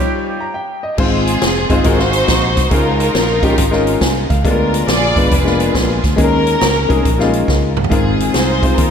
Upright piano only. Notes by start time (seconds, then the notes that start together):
Already playing: G3 D#4 F4 C#5
0.40 A#5
0.54 G5
0.83 D#5
0.98 G#2 G#3 C4 D#4 F4 C5
1.70 G#3 C4 D#4 F4 C5
1.84 G#2 G#3 C4 F4 F#4 A#4
1.98 G#3 C4 F#4 C5 F5
2.71 C#3 G#3 C#4 D#4 F4 A#4
3.43 G#3 C#4 D#4 F4 G4
3.71 G#3 C#4 D#4 F4 A#4
4.02 G#5
4.30 F5
4.44 D3 G#3 B3 D4 F4 A4
4.51 A#4
5.16 G#3 B3 D4 F4 B4
5.45 G#3 A#3 B3 D4 F4
6.16 D#3 G#3 A#3 C#4 D#4 G#4
6.23 A#4
6.89 G#3 A#3 C#4 D#4 G#4
7.18 G3 A#3 C#4 D#4 F4
7.24 G#3
7.90 G#2 G#3 C4 D#4 F4 A#4
8.62 G#3 C4 D#4 F4 C5